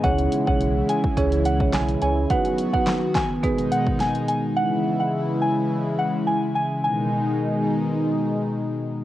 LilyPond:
<<
  \new Staff \with { instrumentName = "Synth bell" } { \time 4/4 \key gis \minor \tempo 4 = 106 fis''8 r16 fis''16 r8 gis''16 r8. fis''16 r16 gis''16 r16 gis''16 r16 | fis''8 r16 fis''16 r8 gis''16 r8. fis''16 r16 gis''16 r16 gis''16 r16 | fis''8 r16 fis''16 r8 gis''16 r8. fis''16 r16 gis''16 r16 gis''16 r16 | gis''2. r4 | }
  \new Staff \with { instrumentName = "Marimba" } { \time 4/4 \key gis \minor <cis' e' gis' cis''>8. <cis' e' gis' cis''>16 r4 <cis' e' gis' cis''>16 r8 <cis' e' gis' cis''>16 r8 <cis' e' gis' cis''>16 r16 | <b dis' fis' b'>8. <b dis' fis' b'>16 r4 <b dis' gis' b'>2 | r1 | r1 | }
  \new Staff \with { instrumentName = "Analog synth pad" } { \clef bass \time 4/4 \key gis \minor <cis e gis e'>1 | <dis fis b fis'>2 <b, gis dis'>2 | <cis e gis e'>1 | <b, dis gis dis'>1 | }
  \new Staff \with { instrumentName = "Sub bass" } { \clef bass \time 4/4 \key gis \minor cis,8 r16 b,,8. r8 cis,8. b,,8. cis,8 | r1 | r1 | r1 | }
  \new DrumStaff \with { instrumentName = "Drums" } \drummode { \time 4/4 <hh bd>16 hh16 hh16 bd16 hh8 hh16 bd16 <hh bd>16 hh16 hh16 bd16 <hc hh sn>16 hh16 hh8 | <hh bd>16 hh16 hh16 bd16 <hc hh sn>8 <hc hh bd sn>8 <hh bd>16 hh16 hh16 bd16 <hh sn>16 hh16 hh8 | r4 r4 r4 r4 | r4 r4 r4 r4 | }
>>